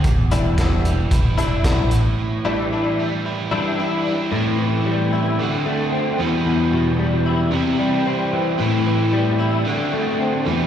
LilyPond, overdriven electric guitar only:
\new Staff \with { instrumentName = "Overdriven electric guitar" } { \clef bass \time 4/4 \key a \dorian \tempo 4 = 112 e,8 b,8 e8 g8 e'8 d'8 e'8 a,8 | a,8 e8 e8 g8 e'8 d'8 e'8 d'8 | <a, e a c' e'>2 <d a c' fis'>4. <e, b, e g b e'>8~ | <e, b, e g b e'>2 <c e g c' e'>2 |
<a, e a c' e'>2 <d a c' fis'>4. <e, b, e g b e'>8 | }